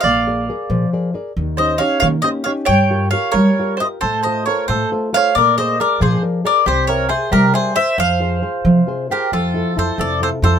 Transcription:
X:1
M:6/8
L:1/8
Q:3/8=91
K:Fm
V:1 name="Mandolin"
f4 z2 | z e f f e f | g2 f d2 e | c e d c z f |
=d e d c z d | c d c B c =e | f4- f B | [K:F] A2 c d c c |]
V:2 name="Mandolin"
=d4 z2 | z c d d c d | d2 d B2 c | =A c B A z d |
B c B A z B | G B A G A c | c4- c G | [K:F] F2 A A A A |]
V:3 name="Nylon-string guitar"
B, [AB=d] [ABd] F, [ABd] [ABd] | E, [DEG] [DEG] B, [DEG] [DEG] | G, [FGB] [FGB] G, [FGB] [FGB] | =A, [F=Ac] [FAc] A, [FAc] [FAc] |
B, [AB=d] [ABd] F, [ABd] [ABd] | C [Bc=e] [Bce] G, [Bce] [Bce] | F, [FAc] [FAc] C, [FAc] [FAc] | [K:F] F, [EFA] [EFA] C, [EFA] [EFA] |]
V:4 name="Upright bass" clef=bass
B,,,3 B,, z2 | E,,3 E, z2 | G,,3 G, z2 | =A,,3 A,, z2 |
B,,3 B,, z2 | C,,3 C, z2 | F,,3 F, z2 | [K:F] F,,2 F,, F,,2 F,, |]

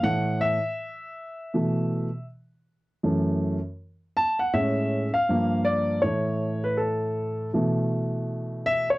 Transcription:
X:1
M:4/4
L:1/16
Q:"Swing 16ths" 1/4=80
K:Alyd
V:1 name="Grand piano"
f2 e8- e2 z4 | z6 a f e3 ^e3 =d2 | c3 B A4 z6 e c |]
V:2 name="Grand piano" clef=bass
[A,,E,A,]2 z6 [B,,E,A,]2 z6 | [F,,E,A,]2 z6 [A,,G,C]2 z2 [=G,,=F,_B,]4 | [A,,E,A,]8 [B,,E,A,]8 |]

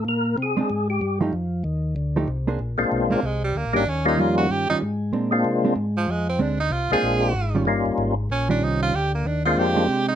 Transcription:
X:1
M:4/4
L:1/8
Q:"Swing" 1/4=189
K:Bbmix
V:1 name="Tenor saxophone"
z8 | z8 | z3 B, A, G, B, D | _D E F _G =G E z2 |
z4 z F, A, C | D E F A4- A | z4 _D =D E F | G B, D F G3 E |]
V:2 name="Tonewheel organ"
B2 A3 G2 z | z8 | z [A,B,CDF]3 z3 [G,B,_DEG] | z [G,B,_DEF]3 z4 |
z [A,B,CDF]3 z4 | z3 [A,B,CDF]3 z2 | [G,B,_DEF]3 z4 z | z3 [A,B,CDF]3 z2 |]
V:3 name="Hollow-body jazz guitar"
z3 [A,CD] z3 [F,=A,EG] | z4 z [F,=A,EG] z [B,D_Ac] | z3 [A,CD] z4 | z2 [E,G,_DF]3 [E,G,DF] z2 |
[A,CD] z2 [A,CD] z4 | [A,CD] z6 [E,G,_DF] | z4 z [E,G,_DF]3 | z4 z [A,CD]3 |]
V:4 name="Tonewheel organ" clef=bass
B,,2 C, C, A,,2 G,,2 | F,,2 E,,2 D,,2 C,,2 | B,,, B,,, _C,, C,, =C,,2 (3D,, B,,, A,,, | E,,2 F,,2 G,, G,, A,,2 |
B,,2 C,2 A,,2 F,,2 | D,,2 C,, C,, B,,,2 A,,,2 | G,,, G,,, A,,,2 B,,,2 C,,2 | D,,2 E,,2 F,,2 C,2 |]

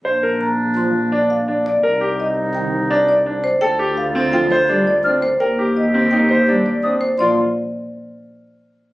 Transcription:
X:1
M:5/4
L:1/8
Q:1/4=168
K:Bb
V:1 name="Flute"
z8 z2 | z8 z2 | z8 f' z | z8 e' z |
c' z8 z |]
V:2 name="Marimba"
z2 b z c' z2 f z d | z2 e z g z2 d z c | g z f z g c z d z c | g z e z g c z d z c |
d z8 z |]
V:3 name="Grand piano"
c B z4 D z D z | B G z4 D z D z | A G z C F c D z D z | B G z C E c D z D z |
F z8 z |]
V:4 name="Clarinet"
D8- D z | E8- E z | F8- F z | G8- G z |
z8 z2 |]
V:5 name="Pipe organ" clef=bass
z4 F, z4 z | z4 E, z4 z | z4 F, z G, z C z | z4 E, z G, z C z |
F, z8 z |]
V:6 name="Double bass" clef=bass
B,,,8- B,,,2 | C,,8- C,,2 | D,,8- D,,2 | E,,8- E,,2 |
B,,, z8 z |]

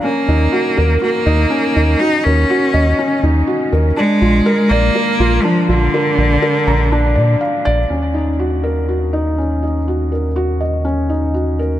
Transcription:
X:1
M:4/4
L:1/8
Q:1/4=122
K:Ebm
V:1 name="Felt piano"
D E G B G E D E | G B G e D E G B | =D F B =d B F D F | B =d B b =D d f d |
D E G B G E D E | G B G e D E G B |]
V:2 name="Cello"
B,4 B,4 | E D4 z3 | A,3 B,3 F, =D,- | =D,6 z2 |
z8 | z8 |]
V:3 name="Analog synth bass" clef=bass
z E,, z E,, z E,, z E,, | z E,, z E,, z E,, z E,, | z B,,, z B,,, z B,,, z B,,, | z B,,, z B,,,2 B,, z B,,, |
E,,8- | E,,8 |]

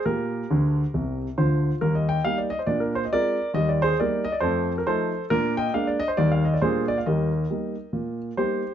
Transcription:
X:1
M:4/4
L:1/16
Q:"Swing" 1/4=137
K:Eb
V:1 name="Grand piano"
[GB]12 [Fc]4 | B e [eg]2 f d e c d B c e [Bd]4 | e d [Ac]2 [Bd]2 e d [=Ac]3 B [Ac]4 | [FB]2 [eg]2 f d e c d f e d [Ac]2 d f |
[Be]12 [Gc]4 |]
V:2 name="Grand piano" clef=bass
B,,4 [D,,D,]4 [C,,C,]4 [D,,D,]4 | [E,,G,]4 [G,B,E]4 [B,,D]4 [A,CF]4 | [E,,G,]4 [G,B,E]4 [F,,=A,]4 [F,A,E]4 | [B,,D]4 [A,B,D]4 [E,,G,B,E]4 [B,,G,B,D]4 |
[E,,G,]4 [G,B,E]4 B,,4 [G,B,E]4 |]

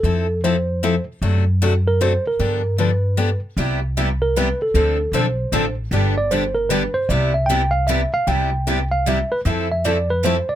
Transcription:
X:1
M:3/4
L:1/16
Q:"Swing" 1/4=153
K:C
V:1 name="Tine electric piano"
A4 c6 z2 | z6 _B2 c2 B2- | _B4 =B6 z2 | z6 _B2 =B2 A2- |
A4 c6 z2 | z2 d2 c2 _B2 =B2 c2 | d2 e2 g2 f2 e2 f2 | g6 f2 e2 B2 |
z2 e2 d2 B2 c2 d2 |]
V:2 name="Steel-string acoustic guitar"
[F,CEA]2 z2 [F,CEA] z3 [F,CEA] z3 | [C,^F,A,D^F]2 z2 [C,F,A,DF] z3 [C,F,A,DF] z3 | [D,F,B,DG]2 z2 [D,F,B,DG] z3 [D,F,B,DG] z3 | [C,G,B,EG]2 z2 [C,G,B,EG] z3 [C,G,B,EG] z3 |
[D,F,CDA]2 z2 [D,F,CDA] z3 [D,F,CDA] z3 | [D,G,B,DG]2 z2 [D,G,B,DG] z3 [D,G,B,DG] z3 | [C,G,B,EG]2 z2 [C,G,B,EG] z3 [C,G,B,EG] z3 | [C,G,B,EG]2 z2 [C,G,B,EG] z3 [C,G,B,EG] z3 |
[F,CEA]2 z2 [F,CEA] z3 [F,CEA] z3 |]
V:3 name="Steel-string acoustic guitar"
z12 | z12 | z12 | [C,G,B,EG]2 z2 [C,G,B,EG] z3 [C,G,B,EG] z3 |
[D,F,CDA]2 z2 [D,F,CDA] z3 [D,F,CDA] z3 | [D,G,B,DG]2 z2 [D,G,B,DG] z3 [D,G,B,DG] z3 | [C,G,B,EG]2 z2 [C,G,B,EG] z3 [C,G,B,EG] z3 | [C,G,B,EG]2 z2 [C,G,B,EG] z3 [C,G,B,EG] z3 |
[F,A,CEA]2 z2 [F,A,CEA] z3 [F,A,CEA] z3 |]
V:4 name="Upright bass" clef=bass
F,,12 | ^F,,12 | G,,12 | C,,12 |
D,,4 B,,,4 A,,,4 | G,,,12 | C,,12 | C,,12 |
F,,12 |]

